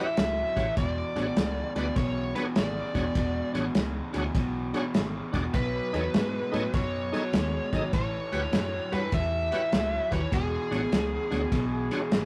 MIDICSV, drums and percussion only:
0, 0, Header, 1, 2, 480
1, 0, Start_track
1, 0, Tempo, 597015
1, 621, Time_signature, 4, 2, 24, 8
1, 9850, End_track
2, 0, Start_track
2, 0, Title_t, "Drums"
2, 138, Note_on_c, 9, 51, 83
2, 142, Note_on_c, 9, 38, 103
2, 218, Note_off_c, 9, 51, 0
2, 222, Note_off_c, 9, 38, 0
2, 455, Note_on_c, 9, 51, 57
2, 456, Note_on_c, 9, 36, 79
2, 459, Note_on_c, 9, 38, 33
2, 536, Note_off_c, 9, 51, 0
2, 537, Note_off_c, 9, 36, 0
2, 540, Note_off_c, 9, 38, 0
2, 618, Note_on_c, 9, 51, 80
2, 619, Note_on_c, 9, 36, 107
2, 622, Note_on_c, 9, 38, 34
2, 698, Note_off_c, 9, 51, 0
2, 700, Note_off_c, 9, 36, 0
2, 702, Note_off_c, 9, 38, 0
2, 935, Note_on_c, 9, 51, 54
2, 939, Note_on_c, 9, 38, 33
2, 1016, Note_off_c, 9, 51, 0
2, 1020, Note_off_c, 9, 38, 0
2, 1097, Note_on_c, 9, 51, 75
2, 1101, Note_on_c, 9, 38, 104
2, 1178, Note_off_c, 9, 51, 0
2, 1182, Note_off_c, 9, 38, 0
2, 1414, Note_on_c, 9, 51, 58
2, 1418, Note_on_c, 9, 38, 33
2, 1494, Note_off_c, 9, 51, 0
2, 1498, Note_off_c, 9, 38, 0
2, 1577, Note_on_c, 9, 51, 76
2, 1578, Note_on_c, 9, 36, 107
2, 1581, Note_on_c, 9, 38, 33
2, 1657, Note_off_c, 9, 51, 0
2, 1658, Note_off_c, 9, 36, 0
2, 1661, Note_off_c, 9, 38, 0
2, 1894, Note_on_c, 9, 51, 56
2, 1898, Note_on_c, 9, 38, 33
2, 1975, Note_off_c, 9, 51, 0
2, 1979, Note_off_c, 9, 38, 0
2, 2055, Note_on_c, 9, 51, 77
2, 2059, Note_on_c, 9, 38, 108
2, 2135, Note_off_c, 9, 51, 0
2, 2139, Note_off_c, 9, 38, 0
2, 2371, Note_on_c, 9, 51, 60
2, 2372, Note_on_c, 9, 36, 74
2, 2375, Note_on_c, 9, 38, 33
2, 2451, Note_off_c, 9, 51, 0
2, 2452, Note_off_c, 9, 36, 0
2, 2455, Note_off_c, 9, 38, 0
2, 2536, Note_on_c, 9, 36, 105
2, 2536, Note_on_c, 9, 51, 84
2, 2540, Note_on_c, 9, 38, 34
2, 2616, Note_off_c, 9, 36, 0
2, 2616, Note_off_c, 9, 51, 0
2, 2620, Note_off_c, 9, 38, 0
2, 2853, Note_on_c, 9, 51, 58
2, 2857, Note_on_c, 9, 38, 33
2, 2933, Note_off_c, 9, 51, 0
2, 2937, Note_off_c, 9, 38, 0
2, 3013, Note_on_c, 9, 51, 76
2, 3017, Note_on_c, 9, 38, 107
2, 3093, Note_off_c, 9, 51, 0
2, 3097, Note_off_c, 9, 38, 0
2, 3328, Note_on_c, 9, 51, 63
2, 3332, Note_on_c, 9, 38, 33
2, 3408, Note_off_c, 9, 51, 0
2, 3412, Note_off_c, 9, 38, 0
2, 3495, Note_on_c, 9, 36, 111
2, 3495, Note_on_c, 9, 51, 82
2, 3499, Note_on_c, 9, 38, 33
2, 3575, Note_off_c, 9, 36, 0
2, 3576, Note_off_c, 9, 51, 0
2, 3580, Note_off_c, 9, 38, 0
2, 3812, Note_on_c, 9, 51, 62
2, 3816, Note_on_c, 9, 38, 32
2, 3892, Note_off_c, 9, 51, 0
2, 3896, Note_off_c, 9, 38, 0
2, 3974, Note_on_c, 9, 51, 80
2, 3978, Note_on_c, 9, 38, 103
2, 4055, Note_off_c, 9, 51, 0
2, 4059, Note_off_c, 9, 38, 0
2, 4291, Note_on_c, 9, 51, 60
2, 4292, Note_on_c, 9, 36, 73
2, 4295, Note_on_c, 9, 38, 31
2, 4372, Note_off_c, 9, 36, 0
2, 4372, Note_off_c, 9, 51, 0
2, 4376, Note_off_c, 9, 38, 0
2, 4453, Note_on_c, 9, 51, 79
2, 4455, Note_on_c, 9, 36, 111
2, 4457, Note_on_c, 9, 38, 33
2, 4533, Note_off_c, 9, 51, 0
2, 4535, Note_off_c, 9, 36, 0
2, 4537, Note_off_c, 9, 38, 0
2, 4774, Note_on_c, 9, 51, 58
2, 4778, Note_on_c, 9, 38, 34
2, 4854, Note_off_c, 9, 51, 0
2, 4858, Note_off_c, 9, 38, 0
2, 4937, Note_on_c, 9, 51, 77
2, 4941, Note_on_c, 9, 38, 98
2, 5017, Note_off_c, 9, 51, 0
2, 5021, Note_off_c, 9, 38, 0
2, 5255, Note_on_c, 9, 51, 54
2, 5259, Note_on_c, 9, 38, 34
2, 5335, Note_off_c, 9, 51, 0
2, 5339, Note_off_c, 9, 38, 0
2, 5415, Note_on_c, 9, 51, 76
2, 5417, Note_on_c, 9, 36, 108
2, 5419, Note_on_c, 9, 38, 32
2, 5496, Note_off_c, 9, 51, 0
2, 5498, Note_off_c, 9, 36, 0
2, 5500, Note_off_c, 9, 38, 0
2, 5738, Note_on_c, 9, 51, 53
2, 5742, Note_on_c, 9, 38, 32
2, 5818, Note_off_c, 9, 51, 0
2, 5822, Note_off_c, 9, 38, 0
2, 5895, Note_on_c, 9, 51, 77
2, 5900, Note_on_c, 9, 38, 105
2, 5976, Note_off_c, 9, 51, 0
2, 5980, Note_off_c, 9, 38, 0
2, 6213, Note_on_c, 9, 36, 74
2, 6213, Note_on_c, 9, 51, 58
2, 6217, Note_on_c, 9, 38, 34
2, 6293, Note_off_c, 9, 51, 0
2, 6294, Note_off_c, 9, 36, 0
2, 6297, Note_off_c, 9, 38, 0
2, 6376, Note_on_c, 9, 51, 83
2, 6377, Note_on_c, 9, 36, 108
2, 6380, Note_on_c, 9, 38, 35
2, 6457, Note_off_c, 9, 36, 0
2, 6457, Note_off_c, 9, 51, 0
2, 6461, Note_off_c, 9, 38, 0
2, 6694, Note_on_c, 9, 51, 59
2, 6698, Note_on_c, 9, 38, 33
2, 6774, Note_off_c, 9, 51, 0
2, 6778, Note_off_c, 9, 38, 0
2, 6855, Note_on_c, 9, 51, 83
2, 6859, Note_on_c, 9, 38, 96
2, 6936, Note_off_c, 9, 51, 0
2, 6940, Note_off_c, 9, 38, 0
2, 7175, Note_on_c, 9, 51, 58
2, 7179, Note_on_c, 9, 38, 33
2, 7256, Note_off_c, 9, 51, 0
2, 7260, Note_off_c, 9, 38, 0
2, 7334, Note_on_c, 9, 51, 84
2, 7336, Note_on_c, 9, 36, 108
2, 7338, Note_on_c, 9, 38, 34
2, 7414, Note_off_c, 9, 51, 0
2, 7417, Note_off_c, 9, 36, 0
2, 7418, Note_off_c, 9, 38, 0
2, 7654, Note_on_c, 9, 51, 64
2, 7658, Note_on_c, 9, 38, 31
2, 7734, Note_off_c, 9, 51, 0
2, 7738, Note_off_c, 9, 38, 0
2, 7818, Note_on_c, 9, 51, 81
2, 7822, Note_on_c, 9, 38, 108
2, 7899, Note_off_c, 9, 51, 0
2, 7903, Note_off_c, 9, 38, 0
2, 8135, Note_on_c, 9, 36, 75
2, 8136, Note_on_c, 9, 51, 62
2, 8140, Note_on_c, 9, 38, 33
2, 8216, Note_off_c, 9, 36, 0
2, 8216, Note_off_c, 9, 51, 0
2, 8220, Note_off_c, 9, 38, 0
2, 8299, Note_on_c, 9, 36, 108
2, 8302, Note_on_c, 9, 51, 89
2, 8306, Note_on_c, 9, 38, 34
2, 8380, Note_off_c, 9, 36, 0
2, 8382, Note_off_c, 9, 51, 0
2, 8386, Note_off_c, 9, 38, 0
2, 8620, Note_on_c, 9, 51, 57
2, 8624, Note_on_c, 9, 38, 33
2, 8701, Note_off_c, 9, 51, 0
2, 8705, Note_off_c, 9, 38, 0
2, 8783, Note_on_c, 9, 51, 82
2, 8787, Note_on_c, 9, 38, 103
2, 8863, Note_off_c, 9, 51, 0
2, 8867, Note_off_c, 9, 38, 0
2, 9100, Note_on_c, 9, 51, 57
2, 9104, Note_on_c, 9, 38, 34
2, 9180, Note_off_c, 9, 51, 0
2, 9184, Note_off_c, 9, 38, 0
2, 9261, Note_on_c, 9, 36, 100
2, 9263, Note_on_c, 9, 51, 81
2, 9267, Note_on_c, 9, 38, 34
2, 9342, Note_off_c, 9, 36, 0
2, 9343, Note_off_c, 9, 51, 0
2, 9347, Note_off_c, 9, 38, 0
2, 9577, Note_on_c, 9, 51, 57
2, 9582, Note_on_c, 9, 38, 32
2, 9658, Note_off_c, 9, 51, 0
2, 9662, Note_off_c, 9, 38, 0
2, 9741, Note_on_c, 9, 51, 75
2, 9745, Note_on_c, 9, 38, 110
2, 9822, Note_off_c, 9, 51, 0
2, 9826, Note_off_c, 9, 38, 0
2, 9850, End_track
0, 0, End_of_file